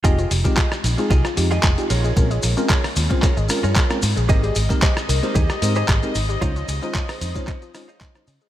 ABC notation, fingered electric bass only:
X:1
M:4/4
L:1/16
Q:"Swing 16ths" 1/4=113
K:Fm
V:1 name="Fingered electric bass" clef=bass
F,,, z F,,, z3 B,,, z C,, z F,, z F,,, z B,,, z | B,,, z B,,, z3 E,, z2 A,,, z G,, z2 A,, B,,, | z2 A,,, z3 C,, z E,, z A,, z A,,, z A,,, z | D,, z D,, z3 F,, z6 z D, z |]